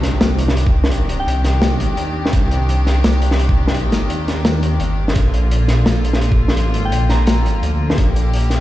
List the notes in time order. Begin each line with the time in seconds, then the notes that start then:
Already playing: C2 D#3 C4 D4 G4, impact
0.03 snare, closed hi-hat
0.21 C2, snare, closed hi-hat
0.38 closed hi-hat
0.48 snare
0.57 closed hi-hat
0.67 kick
0.84 snare
0.91 closed hi-hat
1.09 closed hi-hat
1.20 G5
1.27 C2, closed hi-hat
1.44 snare, closed hi-hat
1.62 snare, closed hi-hat
1.80 closed hi-hat
1.97 D#2, closed hi-hat
2.26 snare
2.33 C2, kick, closed hi-hat
2.51 closed hi-hat
2.69 closed hi-hat
2.87 snare, closed hi-hat
3.04 C2, snare, closed hi-hat
3.22 closed hi-hat
3.31 snare
3.39 closed hi-hat
3.49 kick
3.68 snare
3.74 closed hi-hat
3.92 snare, closed hi-hat
4.09 D#2, closed hi-hat
4.28 snare, closed hi-hat
4.45 snare, closed hi-hat
4.63 closed hi-hat
4.80 G1, closed hi-hat
5.08 snare
5.15 A#1 D3 F3 A#3 F4, kick, closed hi-hat
5.34 closed hi-hat
5.51 closed hi-hat
5.68 snare, closed hi-hat
5.86 A#1, snare, closed hi-hat
6.05 closed hi-hat
6.13 snare
6.21 closed hi-hat
6.32 kick
6.48 snare
6.57 A1, closed hi-hat
6.74 closed hi-hat
6.85 G5
6.92 A#1, closed hi-hat
7.09 A#5, snare, closed hi-hat
7.27 snare, closed hi-hat
7.41 A1
7.46 closed hi-hat
7.62 D2, closed hi-hat
7.90 snare
7.98 A#1 G4, kick, closed hi-hat
8.16 closed hi-hat
8.33 closed hi-hat
8.36 closed hi-hat
8.38 closed hi-hat
8.41 closed hi-hat
8.50 snare, closed hi-hat